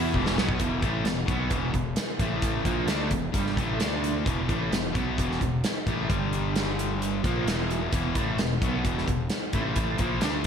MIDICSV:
0, 0, Header, 1, 6, 480
1, 0, Start_track
1, 0, Key_signature, 1, "minor"
1, 0, Tempo, 458015
1, 632, Time_signature, 4, 2, 24, 8
1, 10970, End_track
2, 0, Start_track
2, 0, Title_t, "Analog synth pad"
2, 0, Program_c, 0, 89
2, 0, Note_on_c, 0, 52, 82
2, 0, Note_on_c, 0, 59, 78
2, 0, Note_on_c, 0, 66, 85
2, 605, Note_off_c, 0, 52, 0
2, 614, Note_off_c, 0, 66, 0
2, 616, Note_off_c, 0, 59, 0
2, 10970, End_track
3, 0, Start_track
3, 0, Title_t, "Overdriven electric guitar"
3, 0, Program_c, 1, 29
3, 3536, Note_on_c, 1, 55, 108
3, 3754, Note_off_c, 1, 55, 0
3, 10970, End_track
4, 0, Start_track
4, 0, Title_t, "Distorted electric guitar"
4, 0, Program_c, 2, 30
4, 0, Note_on_c, 2, 52, 92
4, 0, Note_on_c, 2, 59, 94
4, 0, Note_on_c, 2, 64, 101
4, 144, Note_off_c, 2, 52, 0
4, 148, Note_on_c, 2, 40, 88
4, 150, Note_off_c, 2, 59, 0
4, 152, Note_off_c, 2, 64, 0
4, 152, Note_on_c, 2, 47, 91
4, 159, Note_on_c, 2, 52, 105
4, 371, Note_off_c, 2, 47, 0
4, 382, Note_off_c, 2, 52, 0
4, 383, Note_off_c, 2, 40, 0
4, 384, Note_on_c, 2, 47, 91
4, 386, Note_on_c, 2, 54, 90
4, 396, Note_on_c, 2, 59, 96
4, 607, Note_off_c, 2, 47, 0
4, 612, Note_on_c, 2, 40, 86
4, 616, Note_off_c, 2, 54, 0
4, 620, Note_on_c, 2, 47, 88
4, 621, Note_on_c, 2, 52, 84
4, 626, Note_off_c, 2, 59, 0
4, 841, Note_off_c, 2, 52, 0
4, 850, Note_off_c, 2, 47, 0
4, 854, Note_off_c, 2, 40, 0
4, 854, Note_on_c, 2, 45, 78
4, 854, Note_on_c, 2, 52, 80
4, 863, Note_on_c, 2, 57, 88
4, 1091, Note_on_c, 2, 40, 57
4, 1092, Note_off_c, 2, 45, 0
4, 1094, Note_off_c, 2, 52, 0
4, 1096, Note_on_c, 2, 47, 62
4, 1099, Note_off_c, 2, 57, 0
4, 1292, Note_off_c, 2, 40, 0
4, 1294, Note_off_c, 2, 47, 0
4, 1317, Note_on_c, 2, 47, 86
4, 1323, Note_on_c, 2, 54, 87
4, 1333, Note_on_c, 2, 59, 94
4, 1556, Note_off_c, 2, 47, 0
4, 1562, Note_on_c, 2, 40, 88
4, 1568, Note_off_c, 2, 54, 0
4, 1569, Note_on_c, 2, 47, 84
4, 1573, Note_off_c, 2, 59, 0
4, 1576, Note_on_c, 2, 52, 84
4, 1801, Note_off_c, 2, 47, 0
4, 1804, Note_off_c, 2, 40, 0
4, 1813, Note_on_c, 2, 47, 64
4, 1814, Note_off_c, 2, 52, 0
4, 1816, Note_on_c, 2, 40, 55
4, 2012, Note_off_c, 2, 47, 0
4, 2014, Note_off_c, 2, 40, 0
4, 2301, Note_on_c, 2, 45, 75
4, 2307, Note_on_c, 2, 52, 74
4, 2308, Note_on_c, 2, 57, 80
4, 2769, Note_off_c, 2, 45, 0
4, 2772, Note_off_c, 2, 52, 0
4, 2773, Note_on_c, 2, 46, 83
4, 2774, Note_off_c, 2, 57, 0
4, 2776, Note_on_c, 2, 53, 76
4, 2778, Note_on_c, 2, 58, 86
4, 2996, Note_off_c, 2, 46, 0
4, 3001, Note_on_c, 2, 50, 75
4, 3002, Note_off_c, 2, 53, 0
4, 3007, Note_on_c, 2, 57, 84
4, 3009, Note_off_c, 2, 58, 0
4, 3013, Note_on_c, 2, 62, 89
4, 3243, Note_on_c, 2, 40, 62
4, 3244, Note_off_c, 2, 50, 0
4, 3249, Note_off_c, 2, 57, 0
4, 3249, Note_on_c, 2, 47, 68
4, 3252, Note_off_c, 2, 62, 0
4, 3447, Note_off_c, 2, 40, 0
4, 3449, Note_off_c, 2, 47, 0
4, 3481, Note_on_c, 2, 43, 87
4, 3491, Note_on_c, 2, 50, 88
4, 3492, Note_on_c, 2, 55, 89
4, 3726, Note_off_c, 2, 43, 0
4, 3726, Note_off_c, 2, 50, 0
4, 3731, Note_on_c, 2, 45, 83
4, 3732, Note_off_c, 2, 55, 0
4, 3749, Note_on_c, 2, 52, 87
4, 3751, Note_on_c, 2, 57, 99
4, 3955, Note_off_c, 2, 57, 0
4, 3962, Note_off_c, 2, 45, 0
4, 3963, Note_off_c, 2, 52, 0
4, 3966, Note_on_c, 2, 50, 84
4, 3967, Note_on_c, 2, 57, 84
4, 3979, Note_on_c, 2, 62, 97
4, 4449, Note_off_c, 2, 50, 0
4, 4449, Note_off_c, 2, 57, 0
4, 4451, Note_on_c, 2, 40, 89
4, 4455, Note_off_c, 2, 62, 0
4, 4461, Note_on_c, 2, 47, 82
4, 4463, Note_on_c, 2, 52, 89
4, 4686, Note_off_c, 2, 52, 0
4, 4687, Note_off_c, 2, 47, 0
4, 4691, Note_off_c, 2, 40, 0
4, 4692, Note_on_c, 2, 45, 82
4, 4698, Note_on_c, 2, 57, 97
4, 4699, Note_on_c, 2, 52, 91
4, 4931, Note_off_c, 2, 45, 0
4, 4935, Note_off_c, 2, 52, 0
4, 4935, Note_off_c, 2, 57, 0
4, 4935, Note_on_c, 2, 40, 56
4, 4946, Note_on_c, 2, 47, 59
4, 5132, Note_off_c, 2, 40, 0
4, 5138, Note_off_c, 2, 47, 0
4, 5161, Note_on_c, 2, 47, 84
4, 5172, Note_on_c, 2, 54, 88
4, 5175, Note_on_c, 2, 59, 101
4, 5406, Note_off_c, 2, 47, 0
4, 5412, Note_off_c, 2, 54, 0
4, 5413, Note_off_c, 2, 59, 0
4, 5414, Note_on_c, 2, 40, 78
4, 5425, Note_on_c, 2, 47, 89
4, 5427, Note_on_c, 2, 52, 93
4, 5652, Note_off_c, 2, 40, 0
4, 5658, Note_off_c, 2, 47, 0
4, 5659, Note_off_c, 2, 52, 0
4, 5672, Note_on_c, 2, 40, 60
4, 5675, Note_on_c, 2, 47, 65
4, 5861, Note_off_c, 2, 40, 0
4, 5863, Note_off_c, 2, 47, 0
4, 6146, Note_on_c, 2, 45, 79
4, 6156, Note_on_c, 2, 57, 89
4, 6161, Note_on_c, 2, 52, 82
4, 6376, Note_on_c, 2, 43, 83
4, 6379, Note_off_c, 2, 45, 0
4, 6384, Note_off_c, 2, 57, 0
4, 6385, Note_off_c, 2, 52, 0
4, 6385, Note_on_c, 2, 50, 86
4, 6389, Note_on_c, 2, 55, 92
4, 7575, Note_off_c, 2, 43, 0
4, 7580, Note_off_c, 2, 50, 0
4, 7582, Note_off_c, 2, 55, 0
4, 7586, Note_on_c, 2, 46, 82
4, 7599, Note_on_c, 2, 53, 90
4, 7606, Note_on_c, 2, 58, 93
4, 7820, Note_off_c, 2, 46, 0
4, 7821, Note_on_c, 2, 40, 74
4, 7826, Note_off_c, 2, 53, 0
4, 7827, Note_on_c, 2, 47, 82
4, 7830, Note_off_c, 2, 58, 0
4, 7830, Note_on_c, 2, 52, 89
4, 8298, Note_off_c, 2, 40, 0
4, 8301, Note_off_c, 2, 47, 0
4, 8302, Note_off_c, 2, 52, 0
4, 8312, Note_on_c, 2, 40, 86
4, 8319, Note_on_c, 2, 47, 87
4, 8324, Note_on_c, 2, 52, 94
4, 8544, Note_off_c, 2, 40, 0
4, 8547, Note_off_c, 2, 47, 0
4, 8549, Note_off_c, 2, 52, 0
4, 8560, Note_on_c, 2, 45, 76
4, 8563, Note_on_c, 2, 52, 79
4, 8572, Note_on_c, 2, 57, 89
4, 8788, Note_off_c, 2, 45, 0
4, 8789, Note_off_c, 2, 52, 0
4, 8794, Note_off_c, 2, 57, 0
4, 8803, Note_on_c, 2, 40, 54
4, 8804, Note_on_c, 2, 47, 59
4, 8989, Note_off_c, 2, 40, 0
4, 8989, Note_off_c, 2, 47, 0
4, 9038, Note_on_c, 2, 47, 82
4, 9039, Note_on_c, 2, 54, 88
4, 9041, Note_on_c, 2, 59, 89
4, 9252, Note_off_c, 2, 47, 0
4, 9259, Note_on_c, 2, 40, 84
4, 9264, Note_off_c, 2, 54, 0
4, 9265, Note_on_c, 2, 47, 83
4, 9268, Note_on_c, 2, 52, 93
4, 9269, Note_off_c, 2, 59, 0
4, 9490, Note_off_c, 2, 40, 0
4, 9498, Note_off_c, 2, 47, 0
4, 9502, Note_off_c, 2, 52, 0
4, 9503, Note_on_c, 2, 40, 54
4, 9511, Note_on_c, 2, 47, 63
4, 9699, Note_off_c, 2, 40, 0
4, 9703, Note_off_c, 2, 47, 0
4, 9982, Note_on_c, 2, 45, 75
4, 9995, Note_on_c, 2, 52, 85
4, 9998, Note_on_c, 2, 57, 97
4, 10457, Note_off_c, 2, 45, 0
4, 10462, Note_on_c, 2, 46, 72
4, 10467, Note_off_c, 2, 52, 0
4, 10469, Note_off_c, 2, 57, 0
4, 10473, Note_on_c, 2, 53, 80
4, 10483, Note_on_c, 2, 58, 92
4, 10693, Note_off_c, 2, 46, 0
4, 10698, Note_on_c, 2, 50, 77
4, 10704, Note_off_c, 2, 53, 0
4, 10708, Note_on_c, 2, 57, 81
4, 10709, Note_off_c, 2, 58, 0
4, 10714, Note_on_c, 2, 62, 97
4, 10939, Note_off_c, 2, 50, 0
4, 10944, Note_off_c, 2, 57, 0
4, 10946, Note_off_c, 2, 62, 0
4, 10970, End_track
5, 0, Start_track
5, 0, Title_t, "Fingered electric bass"
5, 0, Program_c, 3, 33
5, 0, Note_on_c, 3, 40, 87
5, 144, Note_off_c, 3, 40, 0
5, 153, Note_on_c, 3, 28, 91
5, 375, Note_off_c, 3, 28, 0
5, 392, Note_on_c, 3, 35, 91
5, 615, Note_off_c, 3, 35, 0
5, 622, Note_on_c, 3, 28, 84
5, 849, Note_off_c, 3, 28, 0
5, 864, Note_on_c, 3, 33, 82
5, 1089, Note_off_c, 3, 33, 0
5, 1110, Note_on_c, 3, 28, 68
5, 1332, Note_off_c, 3, 28, 0
5, 1342, Note_on_c, 3, 35, 85
5, 1568, Note_off_c, 3, 35, 0
5, 1578, Note_on_c, 3, 28, 77
5, 1806, Note_off_c, 3, 28, 0
5, 1825, Note_on_c, 3, 28, 61
5, 2049, Note_off_c, 3, 28, 0
5, 2299, Note_on_c, 3, 33, 86
5, 2748, Note_off_c, 3, 33, 0
5, 2776, Note_on_c, 3, 34, 86
5, 3004, Note_off_c, 3, 34, 0
5, 3021, Note_on_c, 3, 38, 78
5, 3246, Note_off_c, 3, 38, 0
5, 3263, Note_on_c, 3, 28, 68
5, 3487, Note_off_c, 3, 28, 0
5, 3500, Note_on_c, 3, 31, 80
5, 3726, Note_off_c, 3, 31, 0
5, 3740, Note_on_c, 3, 33, 78
5, 3966, Note_off_c, 3, 33, 0
5, 3978, Note_on_c, 3, 38, 84
5, 4428, Note_off_c, 3, 38, 0
5, 4468, Note_on_c, 3, 28, 86
5, 4690, Note_off_c, 3, 28, 0
5, 4705, Note_on_c, 3, 33, 80
5, 4928, Note_off_c, 3, 33, 0
5, 4954, Note_on_c, 3, 28, 75
5, 5173, Note_off_c, 3, 28, 0
5, 5189, Note_on_c, 3, 35, 82
5, 5411, Note_off_c, 3, 35, 0
5, 5434, Note_on_c, 3, 28, 82
5, 5653, Note_off_c, 3, 28, 0
5, 5676, Note_on_c, 3, 28, 69
5, 5895, Note_off_c, 3, 28, 0
5, 6148, Note_on_c, 3, 33, 83
5, 6370, Note_off_c, 3, 33, 0
5, 6387, Note_on_c, 3, 31, 87
5, 7546, Note_off_c, 3, 31, 0
5, 7587, Note_on_c, 3, 34, 77
5, 7811, Note_off_c, 3, 34, 0
5, 7824, Note_on_c, 3, 28, 78
5, 8273, Note_off_c, 3, 28, 0
5, 8306, Note_on_c, 3, 28, 80
5, 8531, Note_off_c, 3, 28, 0
5, 8549, Note_on_c, 3, 33, 82
5, 8772, Note_off_c, 3, 33, 0
5, 8789, Note_on_c, 3, 28, 67
5, 9013, Note_off_c, 3, 28, 0
5, 9029, Note_on_c, 3, 35, 84
5, 9253, Note_off_c, 3, 35, 0
5, 9274, Note_on_c, 3, 28, 81
5, 9496, Note_off_c, 3, 28, 0
5, 9515, Note_on_c, 3, 28, 69
5, 9736, Note_off_c, 3, 28, 0
5, 9992, Note_on_c, 3, 33, 81
5, 10439, Note_off_c, 3, 33, 0
5, 10473, Note_on_c, 3, 34, 82
5, 10696, Note_off_c, 3, 34, 0
5, 10717, Note_on_c, 3, 38, 82
5, 10939, Note_off_c, 3, 38, 0
5, 10970, End_track
6, 0, Start_track
6, 0, Title_t, "Drums"
6, 149, Note_on_c, 9, 36, 62
6, 253, Note_off_c, 9, 36, 0
6, 275, Note_on_c, 9, 38, 62
6, 380, Note_off_c, 9, 38, 0
6, 399, Note_on_c, 9, 38, 88
6, 504, Note_off_c, 9, 38, 0
6, 508, Note_on_c, 9, 36, 87
6, 613, Note_off_c, 9, 36, 0
6, 624, Note_on_c, 9, 42, 70
6, 626, Note_on_c, 9, 36, 92
6, 729, Note_off_c, 9, 42, 0
6, 731, Note_off_c, 9, 36, 0
6, 864, Note_on_c, 9, 36, 84
6, 864, Note_on_c, 9, 42, 48
6, 968, Note_off_c, 9, 42, 0
6, 969, Note_off_c, 9, 36, 0
6, 1101, Note_on_c, 9, 42, 69
6, 1109, Note_on_c, 9, 38, 97
6, 1206, Note_off_c, 9, 42, 0
6, 1214, Note_off_c, 9, 38, 0
6, 1344, Note_on_c, 9, 36, 97
6, 1345, Note_on_c, 9, 42, 56
6, 1449, Note_off_c, 9, 36, 0
6, 1449, Note_off_c, 9, 42, 0
6, 1577, Note_on_c, 9, 42, 67
6, 1582, Note_on_c, 9, 36, 93
6, 1682, Note_off_c, 9, 42, 0
6, 1687, Note_off_c, 9, 36, 0
6, 1821, Note_on_c, 9, 36, 79
6, 1825, Note_on_c, 9, 42, 57
6, 1926, Note_off_c, 9, 36, 0
6, 1929, Note_off_c, 9, 42, 0
6, 2055, Note_on_c, 9, 42, 83
6, 2062, Note_on_c, 9, 38, 109
6, 2160, Note_off_c, 9, 42, 0
6, 2167, Note_off_c, 9, 38, 0
6, 2300, Note_on_c, 9, 36, 90
6, 2300, Note_on_c, 9, 42, 58
6, 2405, Note_off_c, 9, 36, 0
6, 2405, Note_off_c, 9, 42, 0
6, 2537, Note_on_c, 9, 42, 77
6, 2540, Note_on_c, 9, 36, 94
6, 2642, Note_off_c, 9, 42, 0
6, 2644, Note_off_c, 9, 36, 0
6, 2779, Note_on_c, 9, 36, 86
6, 2779, Note_on_c, 9, 42, 57
6, 2883, Note_off_c, 9, 36, 0
6, 2883, Note_off_c, 9, 42, 0
6, 3015, Note_on_c, 9, 42, 75
6, 3022, Note_on_c, 9, 38, 98
6, 3120, Note_off_c, 9, 42, 0
6, 3127, Note_off_c, 9, 38, 0
6, 3255, Note_on_c, 9, 42, 62
6, 3259, Note_on_c, 9, 36, 84
6, 3360, Note_off_c, 9, 42, 0
6, 3364, Note_off_c, 9, 36, 0
6, 3499, Note_on_c, 9, 42, 78
6, 3500, Note_on_c, 9, 36, 90
6, 3604, Note_off_c, 9, 36, 0
6, 3604, Note_off_c, 9, 42, 0
6, 3630, Note_on_c, 9, 38, 28
6, 3734, Note_off_c, 9, 38, 0
6, 3744, Note_on_c, 9, 36, 93
6, 3754, Note_on_c, 9, 42, 55
6, 3848, Note_off_c, 9, 36, 0
6, 3859, Note_off_c, 9, 42, 0
6, 3982, Note_on_c, 9, 42, 76
6, 3989, Note_on_c, 9, 38, 102
6, 4087, Note_off_c, 9, 42, 0
6, 4094, Note_off_c, 9, 38, 0
6, 4232, Note_on_c, 9, 42, 57
6, 4337, Note_off_c, 9, 42, 0
6, 4465, Note_on_c, 9, 36, 95
6, 4476, Note_on_c, 9, 42, 71
6, 4570, Note_off_c, 9, 36, 0
6, 4581, Note_off_c, 9, 42, 0
6, 4706, Note_on_c, 9, 36, 86
6, 4712, Note_on_c, 9, 42, 52
6, 4811, Note_off_c, 9, 36, 0
6, 4817, Note_off_c, 9, 42, 0
6, 4951, Note_on_c, 9, 42, 70
6, 4959, Note_on_c, 9, 38, 93
6, 5056, Note_off_c, 9, 42, 0
6, 5064, Note_off_c, 9, 38, 0
6, 5189, Note_on_c, 9, 36, 100
6, 5194, Note_on_c, 9, 42, 54
6, 5294, Note_off_c, 9, 36, 0
6, 5298, Note_off_c, 9, 42, 0
6, 5431, Note_on_c, 9, 36, 93
6, 5439, Note_on_c, 9, 42, 75
6, 5536, Note_off_c, 9, 36, 0
6, 5544, Note_off_c, 9, 42, 0
6, 5571, Note_on_c, 9, 38, 30
6, 5670, Note_on_c, 9, 36, 79
6, 5676, Note_off_c, 9, 38, 0
6, 5677, Note_on_c, 9, 42, 52
6, 5775, Note_off_c, 9, 36, 0
6, 5782, Note_off_c, 9, 42, 0
6, 5909, Note_on_c, 9, 42, 76
6, 5916, Note_on_c, 9, 38, 102
6, 6013, Note_off_c, 9, 42, 0
6, 6021, Note_off_c, 9, 38, 0
6, 6149, Note_on_c, 9, 36, 96
6, 6153, Note_on_c, 9, 42, 58
6, 6254, Note_off_c, 9, 36, 0
6, 6258, Note_off_c, 9, 42, 0
6, 6389, Note_on_c, 9, 36, 94
6, 6393, Note_on_c, 9, 42, 74
6, 6494, Note_off_c, 9, 36, 0
6, 6498, Note_off_c, 9, 42, 0
6, 6632, Note_on_c, 9, 42, 54
6, 6736, Note_off_c, 9, 42, 0
6, 6870, Note_on_c, 9, 42, 74
6, 6878, Note_on_c, 9, 38, 94
6, 6975, Note_off_c, 9, 42, 0
6, 6982, Note_off_c, 9, 38, 0
6, 7117, Note_on_c, 9, 42, 64
6, 7221, Note_off_c, 9, 42, 0
6, 7357, Note_on_c, 9, 42, 75
6, 7461, Note_off_c, 9, 42, 0
6, 7590, Note_on_c, 9, 36, 90
6, 7593, Note_on_c, 9, 42, 54
6, 7694, Note_off_c, 9, 36, 0
6, 7698, Note_off_c, 9, 42, 0
6, 7834, Note_on_c, 9, 42, 83
6, 7841, Note_on_c, 9, 38, 104
6, 7938, Note_off_c, 9, 42, 0
6, 7946, Note_off_c, 9, 38, 0
6, 8074, Note_on_c, 9, 42, 56
6, 8179, Note_off_c, 9, 42, 0
6, 8304, Note_on_c, 9, 42, 75
6, 8307, Note_on_c, 9, 36, 92
6, 8409, Note_off_c, 9, 42, 0
6, 8412, Note_off_c, 9, 36, 0
6, 8545, Note_on_c, 9, 36, 94
6, 8545, Note_on_c, 9, 42, 53
6, 8650, Note_off_c, 9, 36, 0
6, 8650, Note_off_c, 9, 42, 0
6, 8787, Note_on_c, 9, 42, 73
6, 8795, Note_on_c, 9, 38, 98
6, 8892, Note_off_c, 9, 42, 0
6, 8900, Note_off_c, 9, 38, 0
6, 9031, Note_on_c, 9, 36, 98
6, 9037, Note_on_c, 9, 42, 56
6, 9136, Note_off_c, 9, 36, 0
6, 9142, Note_off_c, 9, 42, 0
6, 9271, Note_on_c, 9, 36, 92
6, 9271, Note_on_c, 9, 42, 71
6, 9376, Note_off_c, 9, 36, 0
6, 9376, Note_off_c, 9, 42, 0
6, 9409, Note_on_c, 9, 38, 30
6, 9512, Note_on_c, 9, 36, 80
6, 9514, Note_off_c, 9, 38, 0
6, 9515, Note_on_c, 9, 42, 54
6, 9616, Note_off_c, 9, 36, 0
6, 9620, Note_off_c, 9, 42, 0
6, 9742, Note_on_c, 9, 42, 76
6, 9749, Note_on_c, 9, 38, 101
6, 9846, Note_off_c, 9, 42, 0
6, 9854, Note_off_c, 9, 38, 0
6, 9986, Note_on_c, 9, 42, 54
6, 9991, Note_on_c, 9, 36, 95
6, 10091, Note_off_c, 9, 42, 0
6, 10096, Note_off_c, 9, 36, 0
6, 10225, Note_on_c, 9, 42, 72
6, 10230, Note_on_c, 9, 36, 91
6, 10329, Note_off_c, 9, 42, 0
6, 10335, Note_off_c, 9, 36, 0
6, 10462, Note_on_c, 9, 42, 54
6, 10471, Note_on_c, 9, 36, 93
6, 10566, Note_off_c, 9, 42, 0
6, 10575, Note_off_c, 9, 36, 0
6, 10700, Note_on_c, 9, 42, 73
6, 10707, Note_on_c, 9, 38, 98
6, 10805, Note_off_c, 9, 42, 0
6, 10812, Note_off_c, 9, 38, 0
6, 10970, End_track
0, 0, End_of_file